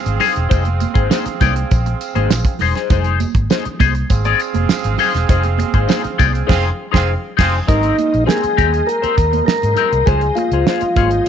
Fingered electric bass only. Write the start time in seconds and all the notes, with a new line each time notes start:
0.06 G#1
0.37 E1
0.51 F1
0.95 G#1
1.26 muted fingered electric bass stroke
1.41 C2
1.72 A#1
2.16 G#1
2.31 A#1
2.61 E1
2.91 F1
3.35 G#1
3.66 muted fingered electric bass stroke
3.81 C2
4.11 G#1
4.55 F1
4.85 G#1
5.15 E1
5.30 F1
5.74 G#1
6.05 muted fingered electric bass stroke
6.20 C2
6.50 F1
6.94 F1
7.39 F1
7.69 G#1
8.14 A#1
8.44 muted fingered electric bass stroke
8.59 D#2
9.04 muted fingered electric bass stroke
9.18 D#2
9.63 G#2
9.92 C2
10.07 C#2
10.51 C#2
10.82 muted fingered electric bass stroke
10.97 G#1